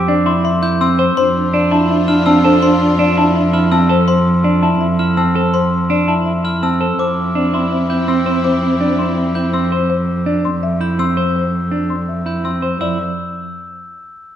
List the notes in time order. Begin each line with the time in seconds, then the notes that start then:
Already playing: F2 G4
0.08 D4 D5
0.26 E4 C6
0.44 E5 C6
0.62 E4 G6
0.81 C4 C6 E6
0.99 C5
1.17 F2 D4 F4 C5 C6
1.36 D4
1.54 D4 D5
1.71 D4 E4 A5
1.90 D4 E5
2.08 D4 E4 F6
2.26 C4 D4 A5 E6
2.44 D4 A4 C5
2.62 D4 C5 C6
2.81 D4
2.99 D4 D5
3.17 D4 E4 A5
3.35 D4 E5
3.53 D4 E4 F6
3.72 C4 D4 A5 E6
3.89 A4 C5
4.08 C5 C6
4.44 D4 D5
4.63 E4 A5
4.81 E5
4.99 E4 F6
5.17 C4 A5 E6
5.35 A4 C5
5.54 C5 C6
5.90 D4 D5
6.08 E4 A5
6.26 E5
6.44 E4 F6
6.63 C4 A5 E6
6.80 A4 C5
6.99 F2 C4 E4 C5 D6
7.17 C4
7.35 C4 D4 D5
7.54 C4 E4 C6
7.72 C4 E5
7.90 C4 E4 G6
8.08 C4 C6 E6
8.26 C4 C5
8.44 C4 C5 D6
8.63 C4
8.81 C4 D4 D5
8.99 C4 E4 C6
9.17 C4 E5
9.35 C4 E4 G6
9.53 C4 C6 E6
9.72 C5
9.90 C5
10.26 D4 D5
10.45 C6
10.63 E5
10.81 E4 G6
10.99 C4 C6 E6
11.17 C5
11.36 C5
11.71 D4 D5
11.90 C6
12.09 E5
12.26 E4 G6
12.44 C4 C6 E6
12.62 C5
12.81 F2 E4 D5 E6